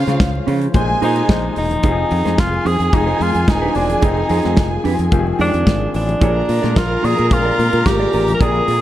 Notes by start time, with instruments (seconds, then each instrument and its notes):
Already playing: grand piano C#3 C#4 F4 C5, french horn section C#3 F3 G#3 F4 C5, violin section F4 F5
0.07 fingered electric bass C#3, clean electric guitar C#4 F4 C5, snare, closed hi-hat, high conga
0.20 fingered electric bass C#2, kick, snare, closed hi-hat, muted conga, high conga
0.35 muted clean electric guitar stroke, muted conga
0.47 fingered electric bass C#3, clean electric guitar C#4 F4 C5, open hi-hat, low conga
0.62 muted clean electric guitar stroke, closed hi-hat
0.74 fingered electric bass A#1, grand piano A#2 G#3 D#4 C5, french horn section C3 G#3 A#3 D#4, violin section G#4 G#5, muted clean electric guitar stroke, kick, closed hi-hat, muted conga, high conga, low conga
0.89 muted clean electric guitar stroke, muted conga
1.01 grand piano A#2 G#3 D#4 C5, fingered electric bass A#2, clean electric guitar D#4 G#4 C5, tenor saxophone D#4, open hi-hat, high conga
1.16 muted clean electric guitar stroke, closed hi-hat
1.29 fingered electric bass A#1, grand piano A#2 G#3 D#4 C5, muted clean electric guitar stroke, kick, snare, closed hi-hat, muted conga, high conga
1.43 muted clean electric guitar stroke, muted conga
1.56 fingered electric bass E1, tenor saxophone D#4, open hi-hat
1.71 muted clean electric guitar stroke, closed hi-hat, low conga
1.83 fingered electric bass F1, french horn section D#3 F3 G#3 C4 F4, grand piano F3 C4 D#4 G4, clean electric guitar D#4 G#4 C5, violin section G#4 G#5, kick, closed hi-hat, muted conga
1.91 grand piano G#4
1.98 muted clean electric guitar stroke
2.11 fingered electric bass F2, muted clean electric guitar stroke, open hi-hat
2.25 fingered electric bass F2, clean electric guitar D#4 G#4 C5, snare, closed hi-hat, high conga
2.38 fingered electric bass F1, tenor saxophone F4, muted clean electric guitar stroke, kick, snare, closed hi-hat, muted conga, high conga
2.53 muted clean electric guitar stroke, muted conga
2.65 fingered electric bass F2, clean electric guitar D#4 G#4 C5, tenor saxophone G#4, open hi-hat, low conga
2.79 fingered electric bass F2, clean electric guitar D#4 G#4 C5, closed hi-hat
2.93 fingered electric bass F1, grand piano F3 C4 D#4 G#4, tenor saxophone D#4, kick, closed hi-hat, high conga, low conga
3.06 clean electric guitar D#4 G#4 C5, muted conga
3.19 fingered electric bass F2, tenor saxophone F4, muted clean electric guitar stroke, open hi-hat, high conga
3.34 fingered electric bass F2, muted clean electric guitar stroke, closed hi-hat
3.47 fingered electric bass D#1, tenor saxophone D#4, muted clean electric guitar stroke, kick, snare, closed hi-hat, high conga
3.62 clean electric guitar D#4 G#4 C5
3.75 fingered electric bass E1, tenor saxophone D4, clean electric guitar D#4 G#4 C5, open hi-hat
3.90 muted clean electric guitar stroke, closed hi-hat, low conga
4.02 fingered electric bass F1, grand piano F3 C4 D#4 G#4, clean electric guitar D#4 G#4 C5, tenor saxophone D#4, kick, closed hi-hat, muted conga
4.17 muted conga
4.29 fingered electric bass F2, clean electric guitar D#4 G#4 C5, open hi-hat
4.43 fingered electric bass F2, clean electric guitar D#4 G#4 C5, snare, closed hi-hat, high conga
4.57 fingered electric bass F1, kick, snare, closed hi-hat
4.71 muted clean electric guitar stroke, muted conga
4.84 fingered electric bass F2, clean electric guitar D#4 G#4 C5, open hi-hat, low conga
4.98 fingered electric bass F2, muted clean electric guitar stroke, closed hi-hat
5.11 fingered electric bass F1, grand piano D#3 F3 C4 G4, muted clean electric guitar stroke, kick, closed hi-hat, muted conga, high conga, low conga
5.19 grand piano G#4
5.27 muted clean electric guitar stroke, muted conga
5.39 fingered electric bass F2, tenor saxophone D4, clean electric guitar D#4 G#4 C5, open hi-hat, high conga
5.54 fingered electric bass F2, muted clean electric guitar stroke, closed hi-hat
5.66 fingered electric bass G#1, muted clean electric guitar stroke, kick, snare, closed hi-hat, high conga
5.81 muted clean electric guitar stroke, muted conga
5.94 fingered electric bass A1, tenor saxophone D4, open hi-hat
6.08 muted clean electric guitar stroke, closed hi-hat, low conga
6.21 fingered electric bass A#1, grand piano A#2 A#3 D4 G#4, french horn section D3 F3 G#3 A#3, clean electric guitar F4 G#4 D5, violin section A#4 A#5, kick, closed hi-hat, muted conga
6.35 muted clean electric guitar stroke, muted conga
6.48 fingered electric bass A#2, muted clean electric guitar stroke, open hi-hat
6.62 fingered electric bass A#2, clean electric guitar F4 G#4 D5, snare, closed hi-hat, high conga
6.76 fingered electric bass A#1, tenor saxophone F4, muted clean electric guitar stroke, kick, snare, closed hi-hat
6.91 muted clean electric guitar stroke
7.03 fingered electric bass A#2, clean electric guitar F4 G#4 D5, tenor saxophone G#4, open hi-hat, low conga
7.18 fingered electric bass A#2, clean electric guitar F4 G#4, closed hi-hat
7.30 fingered electric bass A#1, grand piano A#2 A#3 C4 G#4, tenor saxophone F4, muted clean electric guitar stroke, kick, closed hi-hat, muted conga, high conga, low conga
7.38 grand piano D4
7.45 clean electric guitar F4 G#4 D5, muted conga
7.58 fingered electric bass A#2, muted clean electric guitar stroke, open hi-hat, high conga
7.73 fingered electric bass A#2, muted clean electric guitar stroke, closed hi-hat
7.86 fingered electric bass G#1, tenor saxophone G4, muted clean electric guitar stroke, kick, snare, closed hi-hat, muted conga, high conga
8.00 clean electric guitar F4 G#4 D5, muted conga
8.13 fingered electric bass A1, clean electric guitar F4 G#4 D5, open hi-hat
8.28 closed hi-hat, low conga
8.34 tenor saxophone A#4
8.39 fingered electric bass A#1, grand piano A#2 A#3 D4 G4, french horn section C4, clean electric guitar F4 G#4 D5, tenor saxophone G#4, kick, closed hi-hat, muted conga
8.48 grand piano G#4
8.56 muted conga
8.68 fingered electric bass A#2, clean electric guitar F4 G#4 D5, open hi-hat